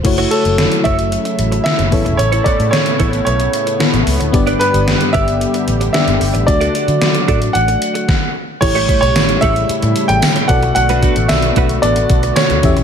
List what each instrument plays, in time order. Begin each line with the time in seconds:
0.03 fingered electric bass F#1, analog synth pad C#3 F#3 A3 E4, fm electric piano A3 E4 F#4 C#5, muted clean electric guitar stroke, kick, closed hi-hat, crash
0.18 clean electric guitar A3 E4 F#4 C#5, closed hi-hat
0.31 clean electric guitar A3 E4 F#4 C#5, grand piano A4, closed hi-hat
0.45 fingered electric bass F#1, muted clean electric guitar stroke, closed hi-hat
0.58 snare, closed hi-hat
0.72 muted clean electric guitar stroke, closed hi-hat
0.84 fingered electric bass F#1, clean electric guitar A3 E4 F#4 C#5, grand piano E5, kick, closed hi-hat
0.98 muted clean electric guitar stroke, closed hi-hat
1.12 muted clean electric guitar stroke, closed hi-hat
1.25 muted clean electric guitar stroke, closed hi-hat
1.39 fingered electric bass A1, closed hi-hat
1.52 muted clean electric guitar stroke, closed hi-hat
1.64 grand piano E5, muted clean electric guitar stroke, snare, closed hi-hat
1.78 fingered electric bass F#1, muted clean electric guitar stroke, closed hi-hat
1.91 fingered electric bass A1, fm electric piano A2 B3 E4 A4 C#5, analog synth pad A3 B3, kick, open hi-hat
2.05 fingered electric bass E1, muted clean electric guitar stroke, closed hi-hat
2.17 fingered electric bass A1, grand piano C#5, muted clean electric guitar stroke, closed hi-hat
2.32 clean electric guitar B3 E4 A4 C#5, closed hi-hat
2.44 clean electric guitar B3 E4 A4 C#5, grand piano D5, kick, closed hi-hat
2.59 fingered electric bass A2, muted clean electric guitar stroke, closed hi-hat
2.71 grand piano C#5, snare, closed hi-hat
2.86 muted clean electric guitar stroke, closed hi-hat
2.99 fingered electric bass A1, clean electric guitar B3 E4 A4 C#5, kick, closed hi-hat
3.13 muted clean electric guitar stroke, closed hi-hat
3.25 fingered electric bass B1, grand piano C#5, muted clean electric guitar stroke, closed hi-hat
3.40 muted clean electric guitar stroke, closed hi-hat
3.53 closed hi-hat
3.67 muted clean electric guitar stroke, closed hi-hat
3.79 fm electric piano B3 E4 A4 C#5, muted clean electric guitar stroke, snare, closed hi-hat
3.93 fingered electric bass A1, muted clean electric guitar stroke, closed hi-hat
4.07 fingered electric bass C#2, open hi-hat
4.20 fingered electric bass D2, muted clean electric guitar stroke, closed hi-hat
4.32 fingered electric bass G1, fm electric piano G2 B3 D4 G4 D5, analog synth pad D3 G3 G4, muted clean electric guitar stroke, kick, closed hi-hat
4.47 clean electric guitar D4 G4 B4 D5, closed hi-hat
4.59 clean electric guitar D4 G4 B4 D5, grand piano B4, closed hi-hat
4.73 fingered electric bass G1, muted clean electric guitar stroke, closed hi-hat
4.88 snare, closed hi-hat
5.00 muted clean electric guitar stroke, closed hi-hat
5.13 fingered electric bass G1, clean electric guitar D4 G4 B4 D5, grand piano E5, kick, closed hi-hat
5.27 muted clean electric guitar stroke, closed hi-hat
5.40 muted clean electric guitar stroke, closed hi-hat
5.54 muted clean electric guitar stroke, closed hi-hat
5.68 fingered electric bass A1, closed hi-hat
5.81 muted clean electric guitar stroke, closed hi-hat
5.93 fm electric piano B3 D4 G4 D5, grand piano E5, muted clean electric guitar stroke, snare, closed hi-hat
6.07 fingered electric bass G1, muted clean electric guitar stroke, closed hi-hat
6.21 fingered electric bass G1, open hi-hat
6.34 fingered electric bass A1, muted clean electric guitar stroke, closed hi-hat
6.47 fingered electric bass D2, fm electric piano D3 A3 D4 F#4 D5, analog synth pad F#3 A3 F#4, grand piano D5, muted clean electric guitar stroke, kick, closed hi-hat
6.61 clean electric guitar D4 F#4 A4 D5, closed hi-hat
6.74 clean electric guitar D4 F#4 A4 D5, closed hi-hat
6.88 fingered electric bass D3, muted clean electric guitar stroke, closed hi-hat
7.01 snare, closed hi-hat
7.15 muted clean electric guitar stroke, closed hi-hat
7.28 fingered electric bass A2, clean electric guitar D4 F#4 A4 D5, kick, closed hi-hat
7.41 muted clean electric guitar stroke, closed hi-hat
7.53 fingered electric bass A1, grand piano F#5, muted clean electric guitar stroke, closed hi-hat
7.68 muted clean electric guitar stroke, closed hi-hat
7.82 closed hi-hat
7.94 muted clean electric guitar stroke, closed hi-hat
8.09 kick, snare
8.61 fingered electric bass A1, fm electric piano A2 A3 E4 G4 C#5, analog synth pad C#3 G3 A3 E4, grand piano C#5, muted clean electric guitar stroke, kick, closed hi-hat, crash
8.75 clean electric guitar A3 E4 G4 C#5, closed hi-hat
8.89 clean electric guitar A3 E4 G4 C#5, kick, closed hi-hat
9.01 fingered electric bass B1, grand piano C#5, muted clean electric guitar stroke, closed hi-hat
9.16 fingered electric bass A1, snare, closed hi-hat, tambourine
9.29 muted clean electric guitar stroke, closed hi-hat
9.41 fingered electric bass A1, clean electric guitar A3 E4 G4 C#5, grand piano E5, kick, closed hi-hat
9.56 muted clean electric guitar stroke, closed hi-hat
9.69 muted fingered electric bass stroke, muted clean electric guitar stroke, closed hi-hat
9.82 fingered electric bass A2, muted clean electric guitar stroke, closed hi-hat
9.96 closed hi-hat
10.08 fingered electric bass A1, grand piano G5, muted clean electric guitar stroke, closed hi-hat
10.22 muted clean electric guitar stroke, snare, closed hi-hat, tambourine
10.36 muted clean electric guitar stroke, closed hi-hat
10.48 fingered electric bass B1, fm electric piano B2 B3 F#4 A4 D5, analog synth pad D3 B3 F#4, grand piano F#5, kick, closed hi-hat
10.63 muted clean electric guitar stroke, closed hi-hat
10.75 fingered electric bass B1, grand piano F#5, muted clean electric guitar stroke, closed hi-hat
10.89 clean electric guitar A3 D4 F#4 B4, closed hi-hat
11.03 clean electric guitar A3 D4 F#4 B4, kick, closed hi-hat
11.16 fingered electric bass A1, muted clean electric guitar stroke, closed hi-hat
11.28 fingered electric bass B1, grand piano E5, snare, closed hi-hat, tambourine
11.42 muted clean electric guitar stroke, closed hi-hat
11.56 fingered electric bass B1, clean electric guitar A3 D4 F#4 B4, kick, closed hi-hat
11.69 muted clean electric guitar stroke, closed hi-hat
11.82 fingered electric bass A1, fm electric piano B3 F#4 A4 D5, grand piano D5, muted clean electric guitar stroke, closed hi-hat
11.96 muted clean electric guitar stroke, closed hi-hat
12.10 fingered electric bass B1, kick, closed hi-hat
12.23 muted clean electric guitar stroke, closed hi-hat
12.36 grand piano C#5, muted clean electric guitar stroke, snare, closed hi-hat, tambourine
12.50 fingered electric bass D2, muted clean electric guitar stroke, closed hi-hat
12.63 fingered electric bass E2, analog synth pad E3 G3 C#4 G4, fm electric piano E3 C#4 E4 G4 E5, kick, closed hi-hat
12.77 fingered electric bass B1, muted clean electric guitar stroke, closed hi-hat